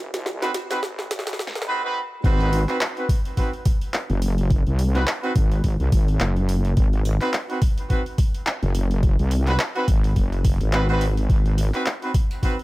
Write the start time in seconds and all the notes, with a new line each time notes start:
Already playing: F#1
0.14 C2, snare, closed hi-hat
0.26 snare
0.42 C4 D#4 F#4 B4, snare, closed hi-hat
0.54 snare, closed hi-hat
0.70 C4 D#4 F#4 B4, snare, closed hi-hat
0.83 G#1, kick, snare
0.99 snare
1.11 G#1, kick, snare, closed hi-hat
1.19 snare
1.27 snare, closed hi-hat
1.33 snare
1.39 kick, snare
1.47 snare
1.55 G#1, snare
1.62 snare
1.67 C4 D#4 F#4 B4
1.83 C4 D#4 F#4 B4
2.24 G#1 C4 D#4 F#4 B4, kick, open hi-hat
2.41 open hi-hat
2.53 open hi-hat
2.68 C4 D#4 F#4 B4, clap, open hi-hat
2.81 clap, open hi-hat
2.97 C4 D#4 F#4 B4, open hi-hat
3.09 kick, open hi-hat
3.25 open hi-hat
3.37 C4 D#4 F#4 B4, kick, open hi-hat
3.53 open hi-hat
3.65 kick, open hi-hat
3.81 open hi-hat
3.94 clap, open hi-hat
4.10 F#1, open hi-hat
4.22 open hi-hat
4.38 open hi-hat
4.50 kick, open hi-hat
4.67 C2, open hi-hat
4.79 open hi-hat
4.95 C4 D#4 F#4 B4, snare, open hi-hat
5.07 clap, open hi-hat
5.23 C4 D#4 F#4 B4, open hi-hat
5.35 G#1, kick, open hi-hat
5.52 open hi-hat
5.64 G#1, kick, open hi-hat
5.80 C2, open hi-hat
5.92 G#1, kick, open hi-hat
6.08 open hi-hat
6.20 F#1, clap, open hi-hat
6.36 open hi-hat
6.49 open hi-hat
6.65 open hi-hat
6.77 G#1, kick, open hi-hat
6.93 open hi-hat
7.05 open hi-hat
7.21 C4 D#4 F#4 B4, clap, open hi-hat
7.34 clap, open hi-hat
7.49 C4 D#4 F#4 B4, open hi-hat
7.62 kick, open hi-hat
7.78 open hi-hat
7.90 C4 D#4 F#4 B4, kick, open hi-hat
8.06 open hi-hat
8.18 kick, open hi-hat
8.34 open hi-hat
8.47 clap, open hi-hat
8.63 F#1, open hi-hat
8.75 open hi-hat
8.91 open hi-hat
9.03 kick, open hi-hat
9.19 C2, open hi-hat
9.31 open hi-hat
9.47 C4 D#4 F#4 B4, clap, snare, open hi-hat
9.59 clap, open hi-hat
9.76 C4 D#4 F#4 B4, open hi-hat
9.88 G#1, kick, open hi-hat
10.04 open hi-hat
10.16 F#1, kick, open hi-hat
10.32 open hi-hat
10.45 kick, open hi-hat
10.61 G#1, open hi-hat
10.73 C4 D#4 F#4 B4, clap, open hi-hat
10.89 C4 D#4 F#4 B4, open hi-hat
11.01 open hi-hat
11.17 open hi-hat
11.29 G#1, kick, open hi-hat
11.46 open hi-hat
11.58 open hi-hat
11.74 C4 D#4 F#4 B4, clap, open hi-hat
11.86 clap, open hi-hat
12.02 C4 D#4 F#4 B4, open hi-hat
12.14 kick, open hi-hat
12.31 open hi-hat
12.43 C4 D#4 F#4 B4, kick, open hi-hat
12.59 open hi-hat